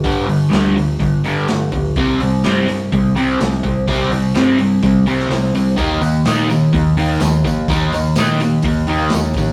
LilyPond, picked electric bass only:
\new Staff \with { instrumentName = "Picked electric bass" } { \clef bass \time 4/4 \key c \dorian \tempo 4 = 126 g,,8 g,,8 d,4 g,,4 g,,8 d,8 | c,8 c,8 g,4 c,4 c,8 c,8 | c,8 c,8 g,4 c,4 c,8 c,8 | ees,8 ees,8 bes,4 ees,4 ees,8 ees,8 |
ees,8 ees,8 bes,4 ees,4 ees,8 a,,8 | }